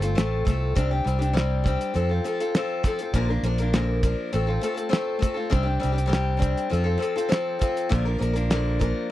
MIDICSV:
0, 0, Header, 1, 4, 480
1, 0, Start_track
1, 0, Tempo, 595829
1, 618, Time_signature, 4, 2, 24, 8
1, 7343, End_track
2, 0, Start_track
2, 0, Title_t, "Steel-string acoustic guitar"
2, 0, Program_c, 0, 25
2, 10, Note_on_c, 0, 69, 56
2, 27, Note_on_c, 0, 65, 55
2, 38, Note_on_c, 0, 60, 46
2, 119, Note_off_c, 0, 60, 0
2, 122, Note_on_c, 0, 57, 75
2, 129, Note_on_c, 0, 60, 73
2, 130, Note_off_c, 0, 65, 0
2, 133, Note_off_c, 0, 69, 0
2, 140, Note_on_c, 0, 65, 83
2, 142, Note_on_c, 0, 69, 93
2, 353, Note_off_c, 0, 57, 0
2, 359, Note_off_c, 0, 60, 0
2, 362, Note_on_c, 0, 57, 62
2, 368, Note_on_c, 0, 60, 62
2, 371, Note_off_c, 0, 65, 0
2, 373, Note_off_c, 0, 69, 0
2, 381, Note_on_c, 0, 65, 72
2, 382, Note_on_c, 0, 69, 79
2, 605, Note_off_c, 0, 60, 0
2, 607, Note_on_c, 0, 48, 86
2, 608, Note_off_c, 0, 57, 0
2, 611, Note_on_c, 0, 55, 73
2, 614, Note_on_c, 0, 60, 81
2, 618, Note_off_c, 0, 65, 0
2, 619, Note_off_c, 0, 69, 0
2, 621, Note_on_c, 0, 62, 91
2, 622, Note_on_c, 0, 67, 81
2, 722, Note_off_c, 0, 67, 0
2, 732, Note_off_c, 0, 48, 0
2, 732, Note_on_c, 0, 67, 61
2, 734, Note_off_c, 0, 55, 0
2, 736, Note_off_c, 0, 60, 0
2, 739, Note_off_c, 0, 62, 0
2, 747, Note_on_c, 0, 62, 51
2, 749, Note_on_c, 0, 60, 48
2, 842, Note_on_c, 0, 55, 60
2, 850, Note_off_c, 0, 60, 0
2, 853, Note_off_c, 0, 62, 0
2, 855, Note_off_c, 0, 67, 0
2, 860, Note_on_c, 0, 60, 66
2, 863, Note_on_c, 0, 62, 67
2, 872, Note_on_c, 0, 67, 71
2, 946, Note_off_c, 0, 67, 0
2, 956, Note_on_c, 0, 67, 54
2, 958, Note_off_c, 0, 62, 0
2, 968, Note_on_c, 0, 62, 50
2, 969, Note_off_c, 0, 55, 0
2, 971, Note_off_c, 0, 60, 0
2, 981, Note_on_c, 0, 60, 44
2, 1072, Note_off_c, 0, 60, 0
2, 1075, Note_on_c, 0, 48, 76
2, 1075, Note_on_c, 0, 55, 73
2, 1078, Note_off_c, 0, 62, 0
2, 1080, Note_off_c, 0, 67, 0
2, 1081, Note_on_c, 0, 60, 84
2, 1087, Note_on_c, 0, 62, 73
2, 1090, Note_on_c, 0, 67, 72
2, 1309, Note_off_c, 0, 55, 0
2, 1319, Note_on_c, 0, 55, 65
2, 1325, Note_off_c, 0, 48, 0
2, 1328, Note_off_c, 0, 60, 0
2, 1331, Note_off_c, 0, 62, 0
2, 1333, Note_off_c, 0, 67, 0
2, 1339, Note_on_c, 0, 60, 76
2, 1343, Note_on_c, 0, 62, 68
2, 1351, Note_on_c, 0, 67, 71
2, 1558, Note_off_c, 0, 60, 0
2, 1559, Note_off_c, 0, 55, 0
2, 1562, Note_on_c, 0, 53, 61
2, 1566, Note_off_c, 0, 62, 0
2, 1568, Note_on_c, 0, 60, 69
2, 1569, Note_on_c, 0, 65, 68
2, 1575, Note_off_c, 0, 67, 0
2, 1578, Note_on_c, 0, 69, 72
2, 1675, Note_off_c, 0, 69, 0
2, 1685, Note_on_c, 0, 69, 50
2, 1688, Note_off_c, 0, 53, 0
2, 1690, Note_off_c, 0, 65, 0
2, 1691, Note_off_c, 0, 60, 0
2, 1699, Note_on_c, 0, 65, 54
2, 1713, Note_on_c, 0, 60, 43
2, 1801, Note_off_c, 0, 60, 0
2, 1807, Note_on_c, 0, 53, 60
2, 1808, Note_off_c, 0, 65, 0
2, 1810, Note_off_c, 0, 69, 0
2, 1811, Note_on_c, 0, 60, 63
2, 1818, Note_on_c, 0, 65, 61
2, 1834, Note_on_c, 0, 69, 75
2, 1927, Note_off_c, 0, 69, 0
2, 1931, Note_off_c, 0, 53, 0
2, 1931, Note_off_c, 0, 65, 0
2, 1933, Note_off_c, 0, 60, 0
2, 1937, Note_on_c, 0, 69, 59
2, 1941, Note_on_c, 0, 65, 60
2, 1956, Note_on_c, 0, 60, 46
2, 2052, Note_on_c, 0, 53, 80
2, 2055, Note_off_c, 0, 69, 0
2, 2056, Note_off_c, 0, 60, 0
2, 2057, Note_off_c, 0, 65, 0
2, 2065, Note_on_c, 0, 60, 85
2, 2070, Note_on_c, 0, 69, 88
2, 2071, Note_on_c, 0, 65, 77
2, 2274, Note_off_c, 0, 53, 0
2, 2283, Note_on_c, 0, 53, 72
2, 2284, Note_off_c, 0, 60, 0
2, 2293, Note_on_c, 0, 60, 68
2, 2298, Note_off_c, 0, 65, 0
2, 2300, Note_off_c, 0, 69, 0
2, 2307, Note_on_c, 0, 65, 68
2, 2310, Note_on_c, 0, 69, 74
2, 2408, Note_off_c, 0, 53, 0
2, 2413, Note_off_c, 0, 60, 0
2, 2413, Note_off_c, 0, 69, 0
2, 2420, Note_off_c, 0, 65, 0
2, 2423, Note_on_c, 0, 69, 59
2, 2435, Note_on_c, 0, 65, 52
2, 2437, Note_on_c, 0, 60, 47
2, 2525, Note_on_c, 0, 46, 81
2, 2533, Note_on_c, 0, 53, 93
2, 2536, Note_off_c, 0, 60, 0
2, 2538, Note_off_c, 0, 69, 0
2, 2538, Note_on_c, 0, 50, 93
2, 2539, Note_on_c, 0, 58, 91
2, 2544, Note_off_c, 0, 65, 0
2, 2546, Note_on_c, 0, 70, 88
2, 2548, Note_on_c, 0, 62, 88
2, 2639, Note_off_c, 0, 70, 0
2, 2645, Note_off_c, 0, 62, 0
2, 2649, Note_off_c, 0, 46, 0
2, 2649, Note_on_c, 0, 70, 54
2, 2653, Note_off_c, 0, 53, 0
2, 2654, Note_off_c, 0, 58, 0
2, 2655, Note_on_c, 0, 62, 49
2, 2656, Note_off_c, 0, 50, 0
2, 2663, Note_on_c, 0, 58, 56
2, 2674, Note_on_c, 0, 53, 51
2, 2757, Note_off_c, 0, 53, 0
2, 2765, Note_off_c, 0, 58, 0
2, 2767, Note_on_c, 0, 53, 63
2, 2771, Note_off_c, 0, 70, 0
2, 2774, Note_off_c, 0, 62, 0
2, 2775, Note_on_c, 0, 58, 66
2, 2788, Note_on_c, 0, 70, 66
2, 2789, Note_on_c, 0, 62, 70
2, 2889, Note_off_c, 0, 70, 0
2, 2890, Note_off_c, 0, 53, 0
2, 2894, Note_off_c, 0, 58, 0
2, 2898, Note_on_c, 0, 70, 59
2, 2901, Note_off_c, 0, 62, 0
2, 2911, Note_on_c, 0, 62, 50
2, 2914, Note_on_c, 0, 58, 54
2, 2926, Note_on_c, 0, 53, 41
2, 3000, Note_off_c, 0, 53, 0
2, 3002, Note_off_c, 0, 58, 0
2, 3008, Note_on_c, 0, 46, 80
2, 3009, Note_on_c, 0, 53, 81
2, 3010, Note_off_c, 0, 70, 0
2, 3011, Note_on_c, 0, 50, 67
2, 3012, Note_on_c, 0, 58, 71
2, 3014, Note_off_c, 0, 62, 0
2, 3020, Note_on_c, 0, 70, 82
2, 3023, Note_on_c, 0, 62, 69
2, 3239, Note_off_c, 0, 53, 0
2, 3242, Note_off_c, 0, 58, 0
2, 3249, Note_on_c, 0, 53, 64
2, 3250, Note_off_c, 0, 46, 0
2, 3252, Note_off_c, 0, 50, 0
2, 3252, Note_on_c, 0, 58, 63
2, 3255, Note_off_c, 0, 70, 0
2, 3258, Note_off_c, 0, 62, 0
2, 3264, Note_on_c, 0, 70, 76
2, 3267, Note_on_c, 0, 62, 72
2, 3481, Note_off_c, 0, 53, 0
2, 3483, Note_off_c, 0, 58, 0
2, 3484, Note_on_c, 0, 57, 65
2, 3486, Note_on_c, 0, 60, 81
2, 3490, Note_off_c, 0, 62, 0
2, 3493, Note_off_c, 0, 70, 0
2, 3493, Note_on_c, 0, 65, 65
2, 3496, Note_on_c, 0, 69, 71
2, 3590, Note_off_c, 0, 69, 0
2, 3599, Note_on_c, 0, 69, 53
2, 3602, Note_off_c, 0, 65, 0
2, 3609, Note_off_c, 0, 57, 0
2, 3609, Note_off_c, 0, 60, 0
2, 3612, Note_on_c, 0, 65, 57
2, 3626, Note_on_c, 0, 60, 44
2, 3709, Note_off_c, 0, 60, 0
2, 3716, Note_on_c, 0, 57, 59
2, 3718, Note_on_c, 0, 60, 60
2, 3723, Note_off_c, 0, 65, 0
2, 3726, Note_off_c, 0, 69, 0
2, 3732, Note_on_c, 0, 65, 70
2, 3736, Note_on_c, 0, 69, 71
2, 3812, Note_off_c, 0, 69, 0
2, 3822, Note_on_c, 0, 69, 56
2, 3824, Note_off_c, 0, 65, 0
2, 3830, Note_off_c, 0, 60, 0
2, 3834, Note_on_c, 0, 65, 55
2, 3840, Note_on_c, 0, 60, 49
2, 3844, Note_off_c, 0, 57, 0
2, 3933, Note_off_c, 0, 60, 0
2, 3940, Note_on_c, 0, 57, 87
2, 3942, Note_off_c, 0, 65, 0
2, 3942, Note_on_c, 0, 60, 80
2, 3947, Note_off_c, 0, 69, 0
2, 3952, Note_on_c, 0, 65, 84
2, 3956, Note_on_c, 0, 69, 93
2, 4171, Note_off_c, 0, 57, 0
2, 4180, Note_on_c, 0, 57, 66
2, 4184, Note_off_c, 0, 60, 0
2, 4191, Note_off_c, 0, 65, 0
2, 4194, Note_on_c, 0, 60, 68
2, 4196, Note_off_c, 0, 69, 0
2, 4201, Note_on_c, 0, 65, 66
2, 4205, Note_on_c, 0, 69, 87
2, 4293, Note_off_c, 0, 69, 0
2, 4303, Note_on_c, 0, 69, 59
2, 4312, Note_off_c, 0, 65, 0
2, 4317, Note_off_c, 0, 57, 0
2, 4320, Note_off_c, 0, 60, 0
2, 4322, Note_on_c, 0, 65, 54
2, 4330, Note_on_c, 0, 60, 48
2, 4428, Note_off_c, 0, 60, 0
2, 4428, Note_on_c, 0, 48, 82
2, 4430, Note_on_c, 0, 55, 79
2, 4435, Note_off_c, 0, 65, 0
2, 4437, Note_on_c, 0, 60, 94
2, 4438, Note_off_c, 0, 69, 0
2, 4439, Note_on_c, 0, 62, 87
2, 4444, Note_on_c, 0, 67, 85
2, 4527, Note_off_c, 0, 67, 0
2, 4536, Note_on_c, 0, 67, 72
2, 4542, Note_off_c, 0, 62, 0
2, 4552, Note_on_c, 0, 62, 60
2, 4559, Note_off_c, 0, 60, 0
2, 4561, Note_off_c, 0, 48, 0
2, 4562, Note_off_c, 0, 55, 0
2, 4569, Note_on_c, 0, 60, 46
2, 4663, Note_off_c, 0, 60, 0
2, 4669, Note_on_c, 0, 55, 69
2, 4672, Note_off_c, 0, 62, 0
2, 4673, Note_on_c, 0, 60, 70
2, 4675, Note_off_c, 0, 67, 0
2, 4682, Note_on_c, 0, 62, 66
2, 4684, Note_on_c, 0, 67, 82
2, 4762, Note_off_c, 0, 67, 0
2, 4771, Note_on_c, 0, 67, 61
2, 4772, Note_off_c, 0, 62, 0
2, 4781, Note_on_c, 0, 62, 52
2, 4786, Note_off_c, 0, 60, 0
2, 4796, Note_on_c, 0, 60, 43
2, 4802, Note_off_c, 0, 55, 0
2, 4880, Note_on_c, 0, 48, 78
2, 4883, Note_off_c, 0, 60, 0
2, 4891, Note_off_c, 0, 62, 0
2, 4893, Note_on_c, 0, 55, 77
2, 4893, Note_on_c, 0, 60, 77
2, 4898, Note_off_c, 0, 67, 0
2, 4901, Note_on_c, 0, 62, 83
2, 4908, Note_on_c, 0, 67, 88
2, 5122, Note_off_c, 0, 55, 0
2, 5132, Note_on_c, 0, 55, 60
2, 5137, Note_off_c, 0, 60, 0
2, 5143, Note_off_c, 0, 62, 0
2, 5146, Note_on_c, 0, 60, 76
2, 5148, Note_off_c, 0, 48, 0
2, 5149, Note_off_c, 0, 67, 0
2, 5152, Note_on_c, 0, 62, 81
2, 5159, Note_on_c, 0, 67, 69
2, 5388, Note_off_c, 0, 60, 0
2, 5391, Note_off_c, 0, 55, 0
2, 5394, Note_on_c, 0, 53, 72
2, 5398, Note_on_c, 0, 60, 74
2, 5404, Note_off_c, 0, 62, 0
2, 5405, Note_off_c, 0, 67, 0
2, 5408, Note_on_c, 0, 65, 83
2, 5408, Note_on_c, 0, 69, 87
2, 5499, Note_off_c, 0, 69, 0
2, 5509, Note_on_c, 0, 69, 61
2, 5513, Note_off_c, 0, 65, 0
2, 5522, Note_off_c, 0, 60, 0
2, 5522, Note_on_c, 0, 65, 47
2, 5525, Note_off_c, 0, 53, 0
2, 5532, Note_on_c, 0, 60, 51
2, 5620, Note_on_c, 0, 53, 69
2, 5622, Note_off_c, 0, 60, 0
2, 5628, Note_off_c, 0, 65, 0
2, 5632, Note_on_c, 0, 60, 69
2, 5635, Note_off_c, 0, 69, 0
2, 5638, Note_on_c, 0, 65, 65
2, 5644, Note_on_c, 0, 69, 70
2, 5755, Note_off_c, 0, 69, 0
2, 5759, Note_off_c, 0, 53, 0
2, 5763, Note_off_c, 0, 65, 0
2, 5764, Note_off_c, 0, 60, 0
2, 5765, Note_on_c, 0, 69, 60
2, 5772, Note_on_c, 0, 65, 54
2, 5785, Note_on_c, 0, 60, 53
2, 5865, Note_off_c, 0, 60, 0
2, 5868, Note_off_c, 0, 65, 0
2, 5870, Note_on_c, 0, 53, 84
2, 5873, Note_off_c, 0, 69, 0
2, 5874, Note_on_c, 0, 60, 93
2, 5878, Note_on_c, 0, 65, 90
2, 5883, Note_on_c, 0, 69, 103
2, 6106, Note_off_c, 0, 53, 0
2, 6116, Note_on_c, 0, 53, 77
2, 6121, Note_off_c, 0, 60, 0
2, 6128, Note_off_c, 0, 65, 0
2, 6129, Note_off_c, 0, 69, 0
2, 6130, Note_on_c, 0, 60, 75
2, 6136, Note_on_c, 0, 65, 73
2, 6139, Note_on_c, 0, 69, 82
2, 6357, Note_off_c, 0, 53, 0
2, 6359, Note_on_c, 0, 46, 99
2, 6365, Note_off_c, 0, 60, 0
2, 6366, Note_on_c, 0, 50, 89
2, 6366, Note_on_c, 0, 53, 92
2, 6369, Note_on_c, 0, 58, 86
2, 6372, Note_off_c, 0, 65, 0
2, 6375, Note_on_c, 0, 62, 93
2, 6377, Note_off_c, 0, 69, 0
2, 6380, Note_on_c, 0, 70, 96
2, 6478, Note_off_c, 0, 70, 0
2, 6485, Note_off_c, 0, 62, 0
2, 6488, Note_on_c, 0, 70, 65
2, 6489, Note_off_c, 0, 46, 0
2, 6490, Note_off_c, 0, 58, 0
2, 6493, Note_off_c, 0, 50, 0
2, 6493, Note_off_c, 0, 53, 0
2, 6495, Note_on_c, 0, 62, 54
2, 6499, Note_on_c, 0, 58, 54
2, 6504, Note_on_c, 0, 53, 53
2, 6584, Note_off_c, 0, 53, 0
2, 6590, Note_off_c, 0, 58, 0
2, 6594, Note_on_c, 0, 53, 66
2, 6599, Note_off_c, 0, 62, 0
2, 6599, Note_on_c, 0, 58, 69
2, 6607, Note_off_c, 0, 70, 0
2, 6608, Note_on_c, 0, 62, 75
2, 6616, Note_on_c, 0, 70, 70
2, 6704, Note_off_c, 0, 70, 0
2, 6714, Note_on_c, 0, 70, 61
2, 6720, Note_off_c, 0, 62, 0
2, 6727, Note_off_c, 0, 53, 0
2, 6728, Note_off_c, 0, 58, 0
2, 6730, Note_on_c, 0, 62, 55
2, 6737, Note_on_c, 0, 58, 45
2, 6745, Note_on_c, 0, 53, 46
2, 6847, Note_off_c, 0, 53, 0
2, 6848, Note_off_c, 0, 70, 0
2, 6850, Note_off_c, 0, 58, 0
2, 6850, Note_on_c, 0, 46, 79
2, 6852, Note_off_c, 0, 62, 0
2, 6856, Note_on_c, 0, 53, 78
2, 6857, Note_on_c, 0, 50, 78
2, 6859, Note_on_c, 0, 58, 89
2, 6862, Note_on_c, 0, 62, 97
2, 6863, Note_on_c, 0, 70, 93
2, 7073, Note_off_c, 0, 53, 0
2, 7078, Note_off_c, 0, 58, 0
2, 7083, Note_on_c, 0, 53, 62
2, 7085, Note_off_c, 0, 62, 0
2, 7087, Note_on_c, 0, 58, 76
2, 7092, Note_off_c, 0, 70, 0
2, 7095, Note_on_c, 0, 62, 77
2, 7097, Note_off_c, 0, 46, 0
2, 7100, Note_off_c, 0, 50, 0
2, 7102, Note_on_c, 0, 70, 84
2, 7325, Note_off_c, 0, 53, 0
2, 7336, Note_off_c, 0, 58, 0
2, 7340, Note_off_c, 0, 62, 0
2, 7340, Note_off_c, 0, 70, 0
2, 7343, End_track
3, 0, Start_track
3, 0, Title_t, "Fingered electric bass"
3, 0, Program_c, 1, 33
3, 0, Note_on_c, 1, 31, 82
3, 118, Note_off_c, 1, 31, 0
3, 139, Note_on_c, 1, 33, 80
3, 354, Note_off_c, 1, 33, 0
3, 380, Note_on_c, 1, 36, 78
3, 595, Note_off_c, 1, 36, 0
3, 615, Note_on_c, 1, 36, 95
3, 803, Note_off_c, 1, 36, 0
3, 854, Note_on_c, 1, 36, 98
3, 1416, Note_off_c, 1, 36, 0
3, 1574, Note_on_c, 1, 41, 121
3, 1762, Note_off_c, 1, 41, 0
3, 2526, Note_on_c, 1, 34, 97
3, 2716, Note_off_c, 1, 34, 0
3, 2764, Note_on_c, 1, 34, 102
3, 3329, Note_off_c, 1, 34, 0
3, 3497, Note_on_c, 1, 33, 99
3, 3683, Note_off_c, 1, 33, 0
3, 4459, Note_on_c, 1, 36, 98
3, 4644, Note_off_c, 1, 36, 0
3, 4704, Note_on_c, 1, 36, 100
3, 5263, Note_off_c, 1, 36, 0
3, 5418, Note_on_c, 1, 41, 108
3, 5605, Note_off_c, 1, 41, 0
3, 6380, Note_on_c, 1, 34, 108
3, 6568, Note_off_c, 1, 34, 0
3, 6614, Note_on_c, 1, 34, 108
3, 7181, Note_off_c, 1, 34, 0
3, 7343, End_track
4, 0, Start_track
4, 0, Title_t, "Drums"
4, 18, Note_on_c, 9, 42, 66
4, 98, Note_off_c, 9, 42, 0
4, 143, Note_on_c, 9, 42, 69
4, 145, Note_on_c, 9, 38, 112
4, 224, Note_off_c, 9, 42, 0
4, 225, Note_off_c, 9, 38, 0
4, 376, Note_on_c, 9, 36, 88
4, 383, Note_on_c, 9, 42, 67
4, 385, Note_on_c, 9, 38, 31
4, 457, Note_off_c, 9, 36, 0
4, 464, Note_off_c, 9, 42, 0
4, 465, Note_off_c, 9, 38, 0
4, 617, Note_on_c, 9, 36, 110
4, 623, Note_on_c, 9, 42, 69
4, 697, Note_off_c, 9, 36, 0
4, 703, Note_off_c, 9, 42, 0
4, 864, Note_on_c, 9, 42, 62
4, 944, Note_off_c, 9, 42, 0
4, 982, Note_on_c, 9, 42, 69
4, 1063, Note_off_c, 9, 42, 0
4, 1103, Note_on_c, 9, 42, 72
4, 1105, Note_on_c, 9, 38, 116
4, 1184, Note_off_c, 9, 42, 0
4, 1185, Note_off_c, 9, 38, 0
4, 1335, Note_on_c, 9, 36, 86
4, 1342, Note_on_c, 9, 42, 60
4, 1416, Note_off_c, 9, 36, 0
4, 1423, Note_off_c, 9, 42, 0
4, 1458, Note_on_c, 9, 42, 68
4, 1538, Note_off_c, 9, 42, 0
4, 1576, Note_on_c, 9, 42, 66
4, 1657, Note_off_c, 9, 42, 0
4, 1816, Note_on_c, 9, 42, 58
4, 1896, Note_off_c, 9, 42, 0
4, 1936, Note_on_c, 9, 42, 55
4, 2017, Note_off_c, 9, 42, 0
4, 2052, Note_on_c, 9, 42, 65
4, 2054, Note_on_c, 9, 38, 113
4, 2133, Note_off_c, 9, 42, 0
4, 2134, Note_off_c, 9, 38, 0
4, 2288, Note_on_c, 9, 36, 85
4, 2293, Note_on_c, 9, 42, 64
4, 2295, Note_on_c, 9, 38, 32
4, 2369, Note_off_c, 9, 36, 0
4, 2374, Note_off_c, 9, 42, 0
4, 2375, Note_off_c, 9, 38, 0
4, 2407, Note_on_c, 9, 42, 65
4, 2488, Note_off_c, 9, 42, 0
4, 2528, Note_on_c, 9, 36, 96
4, 2530, Note_on_c, 9, 42, 68
4, 2608, Note_off_c, 9, 36, 0
4, 2611, Note_off_c, 9, 42, 0
4, 2768, Note_on_c, 9, 42, 68
4, 2849, Note_off_c, 9, 42, 0
4, 2887, Note_on_c, 9, 42, 72
4, 2968, Note_off_c, 9, 42, 0
4, 3010, Note_on_c, 9, 42, 81
4, 3011, Note_on_c, 9, 38, 121
4, 3090, Note_off_c, 9, 42, 0
4, 3092, Note_off_c, 9, 38, 0
4, 3247, Note_on_c, 9, 36, 78
4, 3247, Note_on_c, 9, 42, 68
4, 3327, Note_off_c, 9, 36, 0
4, 3327, Note_off_c, 9, 42, 0
4, 3489, Note_on_c, 9, 42, 74
4, 3570, Note_off_c, 9, 42, 0
4, 3729, Note_on_c, 9, 42, 68
4, 3810, Note_off_c, 9, 42, 0
4, 3846, Note_on_c, 9, 42, 65
4, 3927, Note_off_c, 9, 42, 0
4, 3971, Note_on_c, 9, 42, 75
4, 3972, Note_on_c, 9, 38, 114
4, 4051, Note_off_c, 9, 42, 0
4, 4053, Note_off_c, 9, 38, 0
4, 4209, Note_on_c, 9, 36, 83
4, 4214, Note_on_c, 9, 42, 68
4, 4290, Note_off_c, 9, 36, 0
4, 4294, Note_off_c, 9, 42, 0
4, 4452, Note_on_c, 9, 36, 112
4, 4455, Note_on_c, 9, 42, 75
4, 4532, Note_off_c, 9, 36, 0
4, 4535, Note_off_c, 9, 42, 0
4, 4697, Note_on_c, 9, 42, 64
4, 4777, Note_off_c, 9, 42, 0
4, 4818, Note_on_c, 9, 42, 67
4, 4898, Note_off_c, 9, 42, 0
4, 4937, Note_on_c, 9, 42, 74
4, 4939, Note_on_c, 9, 38, 113
4, 5018, Note_off_c, 9, 42, 0
4, 5019, Note_off_c, 9, 38, 0
4, 5172, Note_on_c, 9, 36, 78
4, 5172, Note_on_c, 9, 42, 63
4, 5253, Note_off_c, 9, 36, 0
4, 5253, Note_off_c, 9, 42, 0
4, 5297, Note_on_c, 9, 42, 59
4, 5377, Note_off_c, 9, 42, 0
4, 5422, Note_on_c, 9, 42, 61
4, 5503, Note_off_c, 9, 42, 0
4, 5658, Note_on_c, 9, 42, 71
4, 5738, Note_off_c, 9, 42, 0
4, 5782, Note_on_c, 9, 42, 66
4, 5863, Note_off_c, 9, 42, 0
4, 5895, Note_on_c, 9, 42, 69
4, 5897, Note_on_c, 9, 38, 122
4, 5976, Note_off_c, 9, 42, 0
4, 5978, Note_off_c, 9, 38, 0
4, 6134, Note_on_c, 9, 42, 68
4, 6136, Note_on_c, 9, 36, 77
4, 6214, Note_off_c, 9, 42, 0
4, 6216, Note_off_c, 9, 36, 0
4, 6259, Note_on_c, 9, 42, 65
4, 6339, Note_off_c, 9, 42, 0
4, 6380, Note_on_c, 9, 36, 119
4, 6386, Note_on_c, 9, 42, 70
4, 6460, Note_off_c, 9, 36, 0
4, 6467, Note_off_c, 9, 42, 0
4, 6625, Note_on_c, 9, 42, 64
4, 6705, Note_off_c, 9, 42, 0
4, 6734, Note_on_c, 9, 42, 77
4, 6815, Note_off_c, 9, 42, 0
4, 6853, Note_on_c, 9, 42, 84
4, 6855, Note_on_c, 9, 38, 117
4, 6934, Note_off_c, 9, 42, 0
4, 6935, Note_off_c, 9, 38, 0
4, 7098, Note_on_c, 9, 42, 61
4, 7100, Note_on_c, 9, 36, 85
4, 7179, Note_off_c, 9, 42, 0
4, 7181, Note_off_c, 9, 36, 0
4, 7343, End_track
0, 0, End_of_file